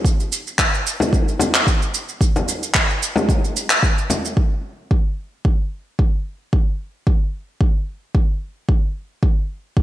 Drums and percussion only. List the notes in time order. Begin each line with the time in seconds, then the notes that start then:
0.05 kick, shaker
0.20 shaker
0.32 shaker
0.47 shaker
0.59 kick, clap, shaker
0.74 shaker
0.87 shaker
1.00 frame drum, shaker
1.13 kick, shaker
1.28 shaker
1.39 frame drum, shaker
1.54 clap, shaker
1.67 kick, shaker
1.82 shaker
1.94 shaker
2.09 shaker
2.21 kick, shaker
2.36 frame drum, shaker
2.48 shaker
2.63 shaker
2.74 kick, clap, shaker
2.90 shaker
3.03 shaker
3.16 frame drum, shaker
3.29 kick, shaker
3.44 shaker
3.56 shaker
3.70 clap, shaker
3.83 kick, shaker
3.98 shaker
4.10 frame drum, shaker
4.25 shaker
4.37 kick
4.91 kick
5.45 kick
5.99 kick
6.53 kick
7.07 kick
7.61 kick
8.15 kick
8.69 kick
9.23 kick
9.77 kick